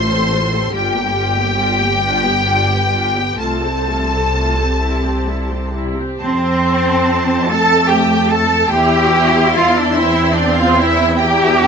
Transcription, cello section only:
0.00 0.70 A2 medium
0.74 3.36 G2 medium
3.40 5.95 C3 medium
6.20 7.45 C4 loud
7.49 7.91 A4 loud
7.91 8.32 G4 medium
8.32 8.73 A4 loud
8.73 9.54 G4 loud
9.56 9.76 F4 loud
9.77 9.97 D4 medium
9.97 10.37 E4 loud
10.36 10.56 D4 medium
10.57 10.76 F4 medium
10.76 11.17 E4 loud
11.17 11.67 G4 loud

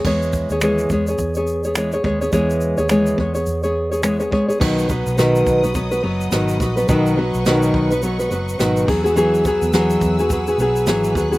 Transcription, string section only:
4.60 8.84 B4 medium
4.60 8.84 D#5 medium
4.60 11.38 F#5 medium
4.60 6.86 D#6 medium
6.89 8.86 C#6 medium
8.88 11.38 B4 medium
8.88 11.38 G#5 medium
8.88 11.13 E6 medium
11.15 11.38 F#6 medium

